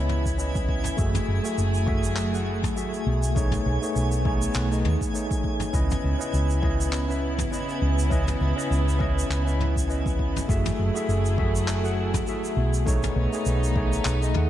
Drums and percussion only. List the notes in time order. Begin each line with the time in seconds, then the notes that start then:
0.09 mid tom
0.26 kick, shaker
0.39 shaker
0.55 kick, shaker
0.69 kick
0.84 mid tom, shaker
0.98 kick, shaker
1.15 mid tom, shaker
1.45 shaker
1.58 shaker
1.74 shaker
1.88 kick
2.04 shaker
2.16 clap, shaker
2.35 shaker
2.63 kick, mid tom, shaker
2.77 shaker
2.94 shaker
3.23 shaker
3.36 kick, shaker
3.52 mid tom, shaker
3.83 shaker
3.96 shaker
4.12 shaker
4.25 kick
4.42 shaker
4.54 clap, shaker
4.72 shaker
4.85 mid tom
5.01 kick, shaker
5.15 shaker
5.31 kick, shaker
5.44 kick
5.60 mid tom, shaker
5.74 kick, shaker
5.91 mid tom, shaker
6.21 shaker
6.34 shaker
6.50 shaker
6.63 kick
6.81 shaker
6.93 clap, shaker
7.11 shaker
7.39 kick, mid tom, shaker
7.53 shaker
7.69 shaker
7.99 shaker
8.11 kick, shaker
8.28 mid tom, shaker
8.59 shaker
8.72 shaker
8.89 shaker
9.00 kick
9.19 shaker
9.31 clap, shaker
9.48 shaker
9.60 mid tom
9.76 kick, shaker
9.90 shaker
10.06 kick, shaker
10.19 kick
10.36 mid tom, shaker
10.49 kick, shaker
10.66 mid tom, shaker
10.96 shaker
11.09 shaker
11.25 shaker
11.38 kick
11.56 shaker
11.68 clap, shaker
11.85 shaker
12.14 kick, mid tom, shaker
12.27 shaker
12.44 shaker
12.74 shaker
12.87 kick, shaker
13.03 mid tom, shaker
13.33 shaker
13.46 shaker
13.64 shaker
13.76 kick
13.93 shaker
14.05 clap, shaker
14.23 shaker
14.34 mid tom